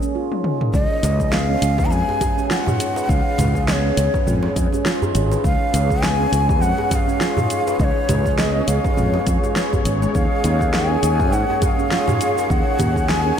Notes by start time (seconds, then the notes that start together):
Already playing: F3 D#4 G#4 C#5
0.02 C#4, shaker
0.15 F4
0.32 D#4, high tom
0.44 G#4, mid tom
0.61 A#4, mid tom
0.74 C#2 C#4 D5, kick, shaker
0.85 D#5
0.91 G#4
1.03 C#2 C#4, closed hi-hat, djembe slap, shaker
1.20 G#4, kick, shaker
1.32 B3 F5, snare, shaker
1.49 C#4
1.62 C#2 G#4, closed hi-hat, shaker
1.78 B4, kick, djembe tone, shaker
1.85 A#5
1.91 F2 G#3 G#4 G#5, shaker
2.08 G#4, djembe tone
2.21 kick, closed hi-hat, djembe bass, shaker
2.37 C#4, djembe tone, shaker
2.50 F4 C#5 F#5, snare, shaker
2.66 D#4, mid tom, djembe slap, djembe bass, shaker
2.79 G#4, closed hi-hat, shaker
2.96 B4, djembe slap, shaker
3.08 C#2 C#4 F5, kick, shaker
3.25 G#4
3.38 C#2 C#4, closed hi-hat, mid tom, djembe slap, djembe bass, shaker
3.55 G#4, kick, shaker
3.67 B3 D#5, snare, shaker
3.72 C#5
3.84 C#4
3.97 C#2 G#4, closed hi-hat, shaker
4.14 B4, kick, djembe tone, shaker
4.27 F2 G#3, mid tom, shaker
4.43 G#4, djembe slap
4.56 F2 C#4, kick, closed hi-hat, shaker
4.72 C#4, djembe tone, shaker
4.86 F4, snare, shaker
5.02 D#4, djembe bass, shaker
5.15 G#1 G#4, closed hi-hat, djembe slap, shaker
5.31 B4, djembe slap, shaker
5.44 C#2 C#4 F5, kick, shaker
5.61 G#4
5.73 C#2 C#4, closed hi-hat, djembe slap, shaker
5.90 G#4, kick, shaker
6.03 B3 G#5, snare, shaker
6.19 C#4
6.32 C#2 G#4, closed hi-hat, shaker
6.49 B4, kick, djembe tone, shaker
6.61 F2 G#3 F#5, shaker
6.78 G#4, djembe tone
6.91 C#4 F#5, kick, closed hi-hat, djembe bass, shaker
6.95 F5
7.08 C#4, djembe tone, shaker
7.20 F4, snare, shaker
7.37 D#4, mid tom, djembe slap, djembe bass, shaker
7.50 G#4, closed hi-hat, shaker
7.67 B4, djembe slap, shaker
7.79 C#2 C#4 D#5, kick, shaker
7.84 C#5
7.96 G#4
8.09 C#2 C#4, closed hi-hat, mid tom, djembe slap, djembe bass, shaker
8.26 G#4, kick, shaker
8.38 B3 D#5, snare, shaker
8.56 C#4
8.68 C#2 G#4 F5, closed hi-hat, shaker
8.84 B4, kick, djembe tone, shaker
8.97 F2 G#3, mid tom, shaker
9.14 G#4, djembe slap
9.27 F2 F4, kick, closed hi-hat, shaker
9.43 G#3, djembe tone, shaker
9.56 B4, snare, shaker
9.73 B3, kick, djembe bass, shaker
9.85 G#1 C#4, closed hi-hat, djembe slap, shaker
10.02 G#3, djembe slap, shaker
10.15 D#2 C#4 F5, kick, shaker
10.32 G#4
10.44 D#2 C#4 D#4, closed hi-hat, djembe slap, shaker
10.61 G#4, kick, shaker
10.74 A#3 G#5, snare, shaker
10.90 C#4
11.03 D#2 G#4, closed hi-hat, shaker
11.20 A#4, kick, djembe tone, shaker
11.32 G#2 G#3 F#5, shaker
11.49 G#4, djembe tone
11.62 C#4 F#5, kick, closed hi-hat, djembe bass, shaker
11.66 F5
11.78 C#4, djembe tone, shaker
11.91 F4, snare, shaker
12.08 D#4, mid tom, djembe slap, djembe bass, shaker
12.20 G#4, closed hi-hat, shaker
12.37 A#4, djembe slap, shaker
12.50 D#2 C#4 F#5, kick, shaker
12.67 G#4
12.79 D#2 C#4, closed hi-hat, mid tom, djembe slap, djembe bass, shaker
12.96 G#4, kick, shaker
13.09 A#3 G#5, snare, shaker
13.26 C#4